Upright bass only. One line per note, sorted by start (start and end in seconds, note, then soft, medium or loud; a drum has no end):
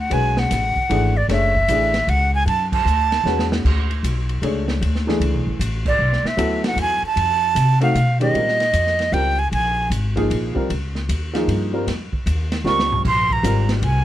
0.11 0.49 B1 medium
0.51 0.74 A1 medium
0.76 muted upright bass stroke soft
0.90 1.28 G#1 medium
1.28 1.67 F#1 medium
1.68 2.06 A1 medium
2.07 2.45 C#2 medium
2.46 2.84 F#2 medium
2.85 3.23 D2 medium
3.24 3.62 E2 medium
3.65 4.03 D2 medium
4.03 4.41 B1 medium
4.42 4.80 C#2 medium
4.81 5.20 D2 medium
5.20 5.34 C#2 medium
5.34 5.46 B1 medium
5.46 5.59 A1 medium
5.59 5.98 A1 medium
5.99 6.23 B1 medium
6.23 muted upright bass stroke soft
6.37 6.75 D2 medium
6.76 7.00 E2 medium
7.02 muted upright bass stroke soft
7.16 7.55 F2 medium
7.55 7.94 C3 medium
7.95 8.33 B2 medium
8.34 8.73 A#2 medium
8.73 9.12 F2 medium
9.12 9.51 C#2 medium
9.52 9.89 A#1 medium
9.90 10.29 G#1 medium
10.30 10.54 A#1 medium
10.56 muted upright bass stroke soft
10.70 11.08 C#2 medium
11.09 11.47 D#2 medium
11.47 11.86 G2 medium
11.87 12.11 F2 medium
12.12 muted upright bass stroke soft
12.26 12.64 D#2 medium
12.64 13.03 C#2 medium
13.05 13.43 A#1 medium
13.43 13.81 G#1 medium
13.82 14.04 C2 medium